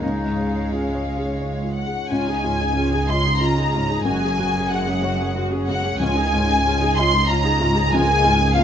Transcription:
0.01 double bass section C#2, felt piano C#2, cello section G#3, viola section G#3, clarinet D#4, violin section C#5 F5
0.26 felt piano G#2
0.72 clarinet C#4, felt piano F4
0.95 felt piano C#5
1.18 felt piano G#4
1.42 felt piano C#5
1.63 felt piano F4
1.75 violin section F#5
1.86 felt piano G#3
2.08 cello section C#2, double bass section C#2, felt piano C#2, viola section C#4 F4, violin section G#5
2.27 viola section D#4 G#4
2.43 felt piano G#2, viola section C#4 F4
2.61 viola section D#4 G#4
2.76 felt piano G#3, viola section C#4 F4
2.92 viola section D#4 G#4
3.08 viola section C#4 F4, felt piano D#5, violin section C6
3.26 viola section D#4 G#4
3.41 viola section C#4 F4, felt piano F4, violin section A#5
3.58 viola section D#4 G#4
3.73 felt piano G#2, viola section C#4 F4
3.89 viola section D#4 G#4
4.04 double bass section F#1, felt piano F#2, cello section F#2, viola section G#3 F#4, violin section G#5
4.22 viola section C#4 G#4
4.39 felt piano C#3, viola section G#3 F#4
4.55 viola section C#4 G#4
4.71 felt piano G#3, viola section G#3 F#4, violin section F#5
4.87 viola section C#4 G#4
5.02 viola section G#3 F#4, felt piano C#5
5.19 viola section C#4 G#4
5.35 viola section G#3 F#4, felt piano F#4
5.51 viola section C#4 G#4
5.66 felt piano C#3, viola section G#3 F#4, violin section F#5
5.84 viola section C#4 G#4
6.00 cello section C#2, felt piano C#2, double bass section C#2, timpani C#3, viola section C#4 F4, violin section G#5
6.16 viola section D#4 G#4
6.32 felt piano G#2, viola section C#4 F4
6.48 viola section D#4 G#4
6.65 felt piano G#3, viola section C#4 F4
6.81 viola section D#4 G#4
6.97 viola section C#4 F4, felt piano D#5, violin section C6
7.13 viola section D#4 G#4
7.28 viola section C#4 F4, felt piano F4, violin section A#5
7.44 viola section D#4 G#4
7.60 felt piano G#2, viola section C#4 F4
7.75 viola section D#4 G#4
7.91 felt piano C#2, timpani C#3, viola section G#3 F4, violin section G#5
8.07 viola section A#3 G#4
8.24 felt piano G#2, viola section G#3 F4
8.39 viola section A#3 G#4
8.54 viola section G#3 F4, felt piano A#3, violin section F5

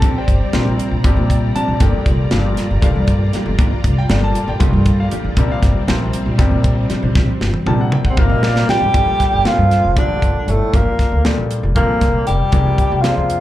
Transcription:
Already playing: grand piano C3 F3 G3 A#3 C4 A4 A5, string machine G3 C4 D5 A#5
0.02 upright bass A#1, clean electric guitar F3 C4 D4 G4, kick, closed hi-hat
0.18 grand piano G4 C5 D5 G5
0.28 upright bass G1, kick, closed hi-hat
0.53 upright bass A#1, grand piano C3 F3 G3 A#3 C4, clean electric guitar F3 C4 D4 G4, snare, closed hi-hat
0.79 closed hi-hat
0.91 upright bass A#1
1.04 upright bass G1, grand piano C3 F3 G3 A#3 D4, clean electric guitar F3 C4 D4 G4, kick, closed hi-hat
1.17 upright bass A#2
1.30 grand piano G5, kick, closed hi-hat
1.55 clean electric guitar F3 C4 D4 G4, grand piano A5, muted upright bass stroke, closed hi-hat
1.68 upright bass A#1
1.80 upright bass G1, grand piano A#2 F3 G3 A3 D4 G5, clean electric guitar F3 A#3 D4 G4, string machine F4, kick, closed hi-hat
2.06 upright bass F1, kick, closed hi-hat
2.31 upright bass G1, grand piano A#2 F3 G3 A3 D4 F5, clean electric guitar F3 A#3 D4 G4, snare, closed hi-hat
2.57 snare, closed hi-hat
2.71 upright bass G1
2.81 upright bass F1, grand piano A#2 F3 G3 A3 D4 F5, clean electric guitar F3 A#3 D4 G4, kick, closed hi-hat
2.95 upright bass G2
3.08 kick, closed hi-hat
3.33 clean electric guitar F3 A#3 D4 G4, muted upright bass stroke, snare, closed hi-hat
3.46 upright bass G1
3.59 upright bass G1, clean electric guitar F3 A#3 D4 G4, kick, closed hi-hat
3.84 upright bass F1, kick, closed hi-hat
3.98 grand piano G5
4.09 upright bass G1, grand piano A#2 F3 G3 A3 D4, clean electric guitar F3 A#3 D4 G4, snare, closed hi-hat
4.24 grand piano A5
4.35 closed hi-hat
4.48 upright bass G1, grand piano G5
4.59 upright bass F1, grand piano A#2 F3 G3 A3 F4, clean electric guitar F3 A#3 D4 G4, kick, closed hi-hat
4.73 upright bass G2
4.86 kick, closed hi-hat
5.00 grand piano F5
5.11 clean electric guitar F3 A#3 D4 G4, muted upright bass stroke, closed hi-hat
5.24 upright bass A1
5.37 upright bass A#1, grand piano C3 F3 G3 A#3 D4, clean electric guitar F3 C4 D4 G4, string machine G3 C4, kick, closed hi-hat
5.52 grand piano F5
5.62 upright bass G1, kick, snare, closed hi-hat
5.87 upright bass A#1, grand piano C3 F3 G3 A#3 C4, clean electric guitar F3 C4 D4 G4, snare, closed hi-hat
6.13 closed hi-hat
6.26 upright bass A#1
6.38 upright bass G1, grand piano C3 F3 G3 A#3 D4, clean electric guitar F3 C4 D4 G4, kick, snare, closed hi-hat
6.51 upright bass A#2
6.64 kick, closed hi-hat
6.90 clean electric guitar F3 C4 D4 G4, muted upright bass stroke, snare, closed hi-hat
7.03 upright bass A#1
7.15 upright bass A#1, clean electric guitar F3 C4 D4 G4, kick, snare
7.41 upright bass G1, snare
7.54 high tom
7.66 upright bass A#1, grand piano C3 F3 G3 A#3 D4 A5, clean electric guitar F3 C4 D4 G4, mid tom
7.81 grand piano F#5
7.92 grand piano G5, mid tom
8.05 upright bass A#1, grand piano F#5, kick
8.10 trombone C3, tenor saxophone C4
8.17 upright bass G1, trombone A#2, grand piano C3 F3 G3 A#3 C4 F5, clean electric guitar F3 C4 D4 G4, tenor saxophone A#3, kick, mid tom
8.30 upright bass A#2, grand piano D#5
8.43 grand piano D5, snare
8.56 snare
8.68 clean electric guitar F3 C4 D4 G4, trombone G3, tenor saxophone G4, muted upright bass stroke, snare
8.81 upright bass G#1
8.94 upright bass G1, grand piano A#2 F3 G3 A3 D4, clean electric guitar F3 A#3 D4 G4, kick, closed hi-hat
9.20 muted upright bass stroke, kick, snare, closed hi-hat
9.33 upright bass G1
9.45 grand piano A#2 F3 G3 A3 C4, clean electric guitar F3 A#3 D4 G4, tenor saxophone F4, snare, closed hi-hat
9.49 trombone F3
9.58 upright bass G2
9.71 snare, closed hi-hat
9.85 upright bass F1
9.96 grand piano A#2 F3 G3 A3 D4, trombone D3, clean electric guitar F3 A#3 D4 G4, tenor saxophone D4, kick, closed hi-hat
10.10 muted upright bass stroke
10.22 upright bass G1, kick, closed hi-hat
10.48 upright bass G1, trombone A2, tenor saxophone A3, closed hi-hat
10.73 upright bass G1, trombone A#2, clean electric guitar F3 A#3 D4 G4, tenor saxophone A#3, kick, closed hi-hat
10.99 muted upright bass stroke, kick, snare, closed hi-hat
11.12 upright bass D2
11.24 grand piano A#2 F3 G3 A3 D4, clean electric guitar F3 A#3 D4 G4, snare, closed hi-hat
11.37 upright bass A#1
11.51 closed hi-hat
11.63 upright bass F1
11.76 grand piano A#2 F3 G3 C4 A4, trombone A#2, clean electric guitar F3 A#3 D4 G4, tenor saxophone A#3, kick, closed hi-hat
11.89 muted upright bass stroke
12.01 upright bass F1, kick, snare, closed hi-hat
12.27 upright bass F1, trombone G3, tenor saxophone G4, closed hi-hat
12.52 upright bass F1, grand piano C3 F3 A#3 D4, clean electric guitar F3 A#3 D4 G#4, kick, closed hi-hat
12.78 muted upright bass stroke, kick, closed hi-hat
12.92 upright bass F1
13.01 grand piano C3 F3 G#3 A#3 D4, clean electric guitar F3 A#3 D4, trombone F3, tenor saxophone F4, snare, closed hi-hat
13.05 clean electric guitar G#4
13.17 upright bass F2
13.30 closed hi-hat

